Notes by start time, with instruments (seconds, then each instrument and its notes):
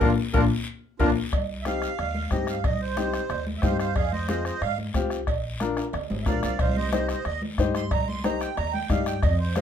0.00 upright bass A#1, accordion A#3 D4 F4, upright piano A#3 D4 F4, clarinet A#4, bombo low, low conga, high timbale, long guiro
0.33 upright bass A#1, upright piano A#3 D4 F4, accordion A#3 D4 F4, clarinet A#4, bombo low, low conga, high timbale, long guiro
0.99 upright bass A#1, accordion A#3 D4 F4, upright piano A#3 D4 F4, clarinet A#4, bombo low, low conga, high timbale, long guiro
1.33 upright bass C2, bombo low, bombo rim, cowbell, high conga, long guiro
1.62 upright piano C4, accordion E5, bombo rim, high conga
1.66 upright piano D#4 G4, accordion F5, short guiro
1.82 bombo rim, short guiro
1.98 upright bass D#2, bombo rim, cowbell, high conga, long guiro
2.14 high conga
2.31 upright bass G2, upright piano C4 D#4 G4, accordion D#5, bombo low, bombo rim, high conga, low timbale, short guiro
2.47 accordion F5, bombo rim, short guiro
2.64 upright bass C2, accordion D#5, bombo low, bombo rim, cowbell, high conga, long guiro
2.81 accordion C5
2.97 upright piano C4 D#4 G4, bombo rim, high conga, short guiro
3.13 bombo rim, short guiro
3.29 upright bass D#2, bombo rim, cowbell, high conga, low conga, long guiro
3.47 high conga
3.58 accordion C5 E5
3.62 upright bass G2, upright piano C4 D#4 G4, accordion F5, bombo low, bombo rim, high conga, low conga, low timbale, short guiro
3.79 accordion C5 F5, bombo rim, short guiro
3.95 upright bass F2, accordion G#4 F5, bombo low, bombo rim, cowbell, high conga, long guiro
4.12 accordion C5 D#5, high conga
4.28 upright piano C4 F4 G#4, accordion C5 D#5, bombo rim, high conga, short guiro
4.45 accordion C5 D#5, bombo rim, short guiro
4.61 upright bass G#2, accordion F5, bombo rim, cowbell, high conga, long guiro
4.78 high conga
4.94 upright bass C2, upright piano C4 F4 G4, bombo low, bombo rim, high conga, low timbale, short guiro
5.10 bombo rim, short guiro
5.27 upright bass A#1, bombo low, bombo rim, cowbell, high conga, long guiro
5.60 upright piano D4 F4 A#4, bombo rim, high conga, short guiro
5.77 bombo rim, high timbale, short guiro
5.93 upright bass D2, bombo rim, cowbell, high conga, low conga, long guiro
6.10 upright bass G#1, high conga, low timbale
6.22 upright piano D4 F4, accordion E5, bombo low, bombo rim, high conga, low conga
6.26 upright bass A#1, upright piano A#4, accordion D5 F5, low timbale, short guiro
6.43 upright bass C2, accordion D5 F5, bombo rim, low timbale, short guiro
6.59 upright bass C2, accordion C5 F5, bombo low, bombo rim, cowbell, high conga, long guiro
6.76 accordion C5 D#5, high conga
6.92 upright piano D#4 G4 C5, accordion C5 D#5, bombo rim, high conga, short guiro
7.09 accordion C5 D#5, bombo rim, short guiro
7.25 upright bass D#2, accordion D#5, bombo rim, cowbell, high conga, long guiro
7.42 high conga
7.58 upright bass G2, upright piano D#4 G4 C5, bombo low, bombo rim, high conga, short guiro
7.75 accordion C6, bombo rim, short guiro
7.91 upright bass C2, accordion A#5, bombo low, bombo rim, cowbell, high conga, long guiro
8.08 accordion C6, high conga
8.24 upright piano D#4 G4 C5, accordion A#5, bombo rim, high conga, short guiro
8.40 accordion G5, bombo rim, short guiro
8.57 upright bass D#2, accordion A#5, bombo rim, cowbell, high conga, low conga, long guiro
8.73 accordion G5, high conga
8.89 upright bass G2, upright piano D#4 G4 D5, accordion F5, bombo low, bombo rim, high conga, low conga, short guiro
9.06 accordion G5, bombo rim, short guiro
9.22 upright bass F2, accordion D#5, bombo low, bombo rim, cowbell, high conga, long guiro
9.39 accordion C5
9.55 upright piano F4 G#4 C5, accordion D#5, bombo rim, high conga, short guiro